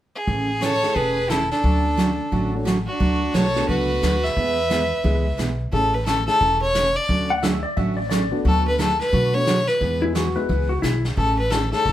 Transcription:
0.15 G#4
0.27 A1 C#3 E3 A3 C#4 G#4, brush sweep, kick
0.61 C#3 E3 A3 C#4 G#4 A4 C#5, snare, hi-hat pedal
0.83 A3 C#4 E4 G#4, snare
0.95 E1 C#3 E3 A3 C#4 G#4 B4, brush sweep, kick
1.30 C#3 E3 A3 C#4 E4 G#4 A4, snare, hi-hat pedal
1.51 D4 A4, snare
1.63 D2 D3 F#3 A3 C#4 F#4, brush sweep, kick
1.97 D3 F#3 A3 C#4 F#4, snare, hi-hat pedal
2.31 A1 D3 F#3 A3 C#4 F#4, brush sweep, kick
2.54 A3 C#4 D4 F#4
2.65 D3 F#3 A3 C#4 F#4, snare, hi-hat pedal
2.87 D4 F#4
3.00 D2 D3 F#3 A3 D4 F#4 B4, brush sweep, kick
3.34 B1 D3 F#3 A3 D4 F#4 A4 B4 C#5, snare, hi-hat pedal
3.55 A3 B3 D4 F#4, snare
3.68 C#2 D3 F#3 A3 D4 F#4 B4, brush sweep, kick
4.02 D2 D3 F#3 A3 D4 F#4 B4, snare, hi-hat pedal
4.24 B4 E5, snare
4.37 E2 E3 G#3 B3 E4 G#4, brush sweep, kick
4.70 E3 G#3 B3 E4 G#4, snare, hi-hat pedal
5.04 C#2 E3 G#3 B3 E4 G#4, brush sweep, kick
5.37 B1 E3 G#3 B3 E4 G#4, snare, hi-hat pedal
5.72 A1 C#3 E3 A3 C#4 E4 G#4 A4, brush sweep, kick
5.94 B4
6.06 C#3 E3 A3 C#4 G#4 A4, snare, hi-hat pedal
6.27 A3 C#4 E4 G#4 A4, snare
6.41 E1 C#3 E3 A3 C#4 G#4, brush sweep, kick
6.62 C#5
6.75 C#3 E3 A3 C#4 G#4, snare, hi-hat pedal
6.96 D5
7.09 D2 D3 F#3 A3 C#4 F#4, brush sweep, kick
7.30 F#5
7.43 D3 F#3 A3 C#4 F#4 E5, snare, hi-hat pedal
7.63 D5
7.77 A1 D3 F#3 A3 C#4 F#4 E5, brush sweep, kick
7.97 D5
8.10 D3 F#3 A3 C#4 F#4 D5, snare, hi-hat pedal
8.31 A3 B3 D4 F#4
8.45 D2 D3 F#3 A3 D4 F#4 A4 B4, brush sweep, kick
8.68 B4
8.79 D3 F#3 A3 D4 F#4 A4 B4, snare, hi-hat pedal
9.00 B4, snare
9.12 B2 D3 F#3 A3 D4 F#4 B4, brush sweep, kick
9.34 A3 B3 D4 F#4 C#5
9.46 D3 F#3 A3 D4 F#4 B4, snare, hi-hat pedal
9.68 B4, snare
9.81 E2 E3 G#3 B3 E4 G#4, brush sweep, kick
10.02 G#3 B3 E4 G#4
10.15 E3 G#3 B3 E4 F#4 G#4, snare, hi-hat pedal
10.36 G#3 B3 E4 F#4 B4
10.49 C#2 E3 G#3 B3 E4 G#4, brush sweep, kick
10.69 F#4
10.82 B1 E3 G#3 B3 E4 G#4, snare, hi-hat pedal
11.05 snare
11.16 A1 C#3 E3 A3 C#4 G#4 A4, brush sweep, kick
11.38 B4
11.50 C#3 E3 A3 C#4 G#4 A4, snare, hi-hat pedal
11.72 A3 C#4 E4 G#4 A4, snare
11.85 E1 C#3 E3 A3 C#4 G#4, brush sweep, kick

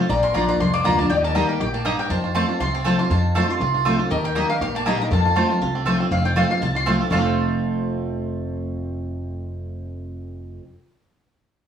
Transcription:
Already playing: C5
0.00 C4
0.09 A#1 A#2 F4 D5 A#5
0.23 A#4 C6
0.34 A#1 F3 A#3 D4 F4 D5 A#5
0.49 F4 A#5
0.59 C2 F2 D4 C6
0.74 A#3 D6
0.84 D2 F3 A#3 D4 F4 D5 A#5
0.98 A#3 D4 F4 A5
1.09 D#2 D#3 G4 D#5 G5
1.24 A#4 A5
1.35 G3 A#3 D#4 G4 D#5 A#5
1.49 A#4
1.60 A#1 A2 G4 G5
1.74 A#3 A5
1.85 G2 A#3 D#4 G4 D#5 G5 A#5
1.99 A#4 G5
2.10 F2 F4 C5 A5
2.24 F4
2.35 F3 A3 C4 F4 C5 A5
2.48 C4 F4
2.60 C2 C3 F4 C6
2.74 C4 A5
2.84 F3 A3 C4 F4 C5 A5
2.99 C4 F4 C6
3.10 F2 F4 A5
3.35 F3 A3 C4 F4 C5 A5
3.49 C4 F4 C6
3.60 C2 C3 F4
3.74 F4
3.85 F3 A3 C4 F4 C5 A5
3.99 C4 F4
4.10 D#2 D#3 G4 A#4 D#5
4.24 A#4 G5
4.35 G3 A#3 D#4 G4 D#5 A#5
4.49 D#4 G4 A#4 F5
4.61 A#1 A#2 G4 F5
4.75 A#3 A5
4.86 G3 A#3 D#4 G4 D#5 A#5
5.00 D#4 G4 A#4 A#5
5.11 F2 F4 A4 A5
5.25 F4
5.36 F3 A3 C4 F4 C5 A5
5.49 C4 F4
5.61 C2 C3 F4
5.75 C4
5.85 F3 A3 C4 F4 C5 A5
5.99 C4 F4
6.11 F1 F2 C4 F5
6.25 F4 G5
6.36 F3 A3 C4 F4 C5 F5 A5
6.49 C4 F4 F5
6.61 C2 C3 F4 A5
6.75 F4 C6
6.86 F3 A3 C4 F4 C5 F5 A5
7.00 C4 F4
7.10 F1 F2 C3 F3 A3 C4 F4 C5 F5 A5
7.14 C4 F4
7.18 A4

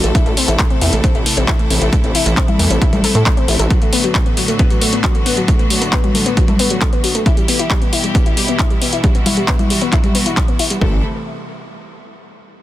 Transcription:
Already playing: D3 F#3 A3 F#4 A4
0.04 A1 A3, closed hi-hat
0.15 C3 E3 E4, kick, closed hi-hat
0.26 A1 A3, closed hi-hat
0.37 C4, open hi-hat
0.48 A1 E4, closed hi-hat
0.59 A3, kick, clap, closed hi-hat
0.70 C4, closed hi-hat
0.81 E2 E4, open hi-hat
0.93 A1 A3, closed hi-hat
1.04 C4, kick, closed hi-hat
1.15 A1 E4, closed hi-hat
1.26 A3, open hi-hat
1.37 A1 C4, closed hi-hat
1.48 E4, kick, clap, closed hi-hat
1.59 A3, closed hi-hat
1.70 A1 C4, open hi-hat
1.82 A1 E4, closed hi-hat
1.93 A3, kick, closed hi-hat
2.04 A1 C4, closed hi-hat
2.15 E4, open hi-hat
2.26 A1 A3, closed hi-hat
2.37 C4, kick, clap, closed hi-hat
2.48 E4, closed hi-hat, high conga
2.59 E2 A3, open hi-hat
2.70 A1 C4, closed hi-hat
2.82 E4, kick, closed hi-hat
2.93 A1 A3, closed hi-hat, high conga
3.04 A4, open hi-hat
3.15 A2 A3, closed hi-hat
3.26 A3, kick, clap, closed hi-hat
3.37 C4, closed hi-hat
3.48 A1 E4, open hi-hat
3.59 A1 A4, closed hi-hat
3.70 A2 D3 F#3 B3 F#4, kick, closed hi-hat
3.82 A3, closed hi-hat
3.93 B3, open hi-hat
4.04 F#3, closed hi-hat
4.15 kick, clap, closed hi-hat
4.26 B3, closed hi-hat
4.37 F#3, open hi-hat
4.48 A3, closed hi-hat
4.59 B3, kick, closed hi-hat
4.70 F#3, closed hi-hat
4.81 A3, open hi-hat
4.93 B3, closed hi-hat
5.04 F#3, kick, clap, closed hi-hat
5.15 A3, closed hi-hat
5.26 B3, open hi-hat
5.37 F#3, closed hi-hat
5.48 A3, kick, closed hi-hat
5.59 B3, closed hi-hat
5.70 F#3, open hi-hat
5.82 A3, closed hi-hat
5.93 B3, kick, clap, closed hi-hat
6.04 F#3, closed hi-hat, high conga
6.15 A3, open hi-hat
6.26 B3, closed hi-hat
6.37 F#3, kick, closed hi-hat
6.48 A3, closed hi-hat, high conga
6.59 B3, open hi-hat
6.70 F#3, closed hi-hat
6.81 kick, clap, closed hi-hat
6.93 B3, closed hi-hat
7.04 F#3, open hi-hat
7.15 A3, closed hi-hat
7.26 B2 E3 G3 E4 G4, kick, closed hi-hat
7.37 G3, closed hi-hat
7.48 B3, open hi-hat
7.59 E4, closed hi-hat
7.70 G3, kick, clap, closed hi-hat
7.82 B3, closed hi-hat
7.93 E4, open hi-hat
8.04 G3, closed hi-hat
8.15 B3, kick, closed hi-hat
8.26 E4, closed hi-hat
8.37 G3, open hi-hat
8.48 B3, closed hi-hat
8.59 E4, kick, clap, closed hi-hat
8.70 G3, closed hi-hat
8.82 B3, open hi-hat
8.93 E4, closed hi-hat
9.04 G3 F#4, kick, closed hi-hat
9.15 B3, closed hi-hat
9.26 E4, open hi-hat, high conga
9.37 G3, closed hi-hat
9.48 B3, kick, clap, closed hi-hat
9.59 E4, closed hi-hat, high conga
9.70 G3, open hi-hat
9.81 B3, closed hi-hat
9.92 E4, kick, clap, closed hi-hat
10.04 G3, closed hi-hat, high conga
10.15 B3, open hi-hat
10.26 E4, closed hi-hat
10.37 G3, kick, clap, closed hi-hat
10.48 B3, closed hi-hat
10.59 E4, open hi-hat
10.70 G3, closed hi-hat
10.81 A1 C3 E3 A3 E4 A4, kick

